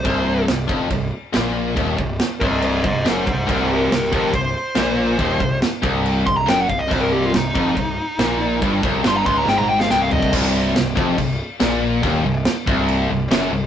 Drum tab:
CC |x---x---x---x---|x---x---x---x---|x---x---x---x---|x---x---x---x---|
SD |----o-------o---|----o-------o---|----o-------o---|----o-------o---|
T1 |----------------|----------------|----------------|----------------|
FT |----------------|----------------|----------------|----------------|
BD |o-----o-o-------|o-o---o---o---o-|o-----o-o-------|o-o---o---o---o-|

CC |x---x---x---x---|x---x-----------|x---x---x---x---|x---x---x---x---|
SD |----o-------o---|----o---o--oo---|----o-------o---|----o-------o---|
T1 |----------------|---------o------|----------------|----------------|
FT |----------------|--------------o-|----------------|----------------|
BD |o-----o-o-------|o-o---o--------o|o-----o-o-------|o-----o---------|